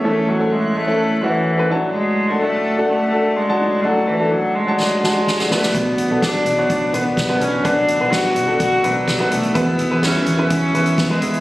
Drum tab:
HH |----------------|----------------|----------------|x-x-x-x-x-x-x-x-|
SD |----------------|----------------|--------o-o-oooo|----o-------o---|
FT |----------------|----------------|----------------|--o---o---o---o-|
BD |----------------|----------------|----------------|o---o---o---o---|

HH |x-x-x-x-x-x-x-xx|x-x-x-x-x-xxx-xx|
SD |----o-------o---|----o-------o---|
FT |--o---o---o---o-|--o---o---o-----|
BD |o---o---o---o---|o---o---o---o---|